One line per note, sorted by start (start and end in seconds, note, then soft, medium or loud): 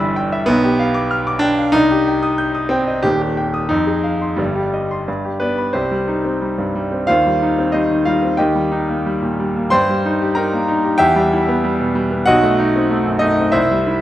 0.00 0.43 G1 medium
0.00 0.43 G2 medium
0.00 0.15 E3 medium
0.00 0.50 G3 loud
0.00 0.49 G4 medium
0.00 0.32 E5 medium
0.00 0.49 B5 medium
0.00 0.49 E6 medium
0.16 0.41 G5 medium
0.32 0.48 E5 medium
0.46 1.70 B1 medium
0.46 1.41 B3 loud
0.64 0.89 G4 medium
0.79 1.04 F5 medium
0.94 1.20 D6 medium
1.11 1.36 F6 medium
1.27 1.52 D6 medium
1.39 1.72 D4 loud
1.39 1.67 G5 medium
1.59 1.74 F5 medium
1.72 3.01 C2 medium
1.72 2.70 D#4 loud
1.91 2.16 G4 medium
2.08 2.32 G5 medium
2.23 2.48 D#6 medium
2.38 2.64 G6 medium
2.55 2.82 D#6 medium
2.69 3.04 C4 medium
2.69 2.98 G5 medium
2.88 3.05 D#5 medium
3.03 3.68 D#1 medium
3.03 3.69 D#2 medium
3.03 3.21 G4 loud
3.22 3.48 G4 medium
3.37 3.64 G5 medium
3.54 3.70 D#6 medium
3.69 4.36 F2 medium
3.69 4.38 D#4 medium
3.87 4.14 G#4 medium
4.04 4.31 F5 soft
4.21 4.39 C6 soft
4.36 5.05 G1 medium
4.36 5.05 G2 medium
4.36 5.06 G3 medium
4.55 4.83 G4 medium
4.73 5.00 D#5 soft
4.91 5.08 C6 soft
5.08 5.73 G2 medium
5.25 5.52 G4 soft
5.40 5.72 B3 medium
5.40 5.74 B4 medium
5.40 5.68 D5 medium
5.58 5.74 B5 soft
5.73 7.04 C2 medium
5.73 6.23 C4 medium
5.73 7.03 G4 medium
5.73 7.07 C5 medium
5.91 6.17 G3 medium
6.08 6.34 D#4 medium
6.25 6.51 C4 soft
6.42 6.68 G3 medium
6.58 6.85 G2 soft
6.75 7.02 G3 medium
6.92 7.08 C4 soft
7.07 8.35 D#2 medium
7.07 7.69 F4 medium
7.07 7.69 C5 medium
7.07 7.73 F5 medium
7.26 7.51 G3 soft
7.42 7.67 D#4 medium
7.59 7.84 C4 medium
7.72 8.00 G3 medium
7.72 8.04 D#4 soft
7.72 8.04 C5 medium
7.72 8.05 D#5 medium
7.90 8.16 D#3 soft
8.05 8.32 G3 soft
8.05 8.36 F4 medium
8.05 8.38 F5 medium
8.23 8.39 C4 soft
8.37 9.68 D#2 medium
8.37 9.67 G4 medium
8.37 9.68 D#5 medium
8.37 9.70 G5 medium
8.55 8.81 G3 soft
8.72 8.97 D#4 medium
8.89 9.15 A#3 medium
9.06 9.32 G3 medium
9.22 9.48 A#2 medium
9.40 9.66 G3 medium
9.56 9.72 A#3 soft
9.70 10.97 G2 medium
9.70 10.32 C5 medium
9.70 10.32 G5 medium
9.70 10.36 C6 loud
9.89 10.14 G3 medium
10.05 10.30 D#4 medium
10.22 10.46 G4 medium
10.35 10.62 D#4 medium
10.35 10.66 A#4 medium
10.35 10.66 G5 medium
10.35 10.67 A#5 medium
10.53 10.78 A#3 medium
10.68 10.94 D#4 medium
10.84 10.97 G4 medium
10.98 12.23 E2 medium
10.98 12.22 G4 medium
10.98 12.22 E5 medium
10.98 12.25 G5 loud
11.16 11.41 G3 medium
11.33 11.57 E4 medium
11.48 11.73 B3 medium
11.64 11.89 G3 medium
11.80 12.05 B2 medium
11.95 12.20 G3 medium
12.11 12.27 B3 medium
12.26 13.52 B1 medium
12.26 13.18 F#4 medium
12.26 13.18 D#5 medium
12.26 13.22 F#5 loud
12.43 12.68 A3 medium
12.59 12.84 D#4 medium
12.76 13.00 C4 medium
12.91 13.16 A3 medium
13.06 13.32 F#2 medium
13.19 13.48 A3 medium
13.19 13.51 D#4 medium
13.19 13.53 D#5 medium
13.38 13.55 C4 soft
13.52 14.01 C2 medium
13.52 13.86 E4 medium
13.52 14.01 C5 medium
13.52 14.01 E5 medium
13.71 13.97 G3 medium
13.87 14.01 E4 medium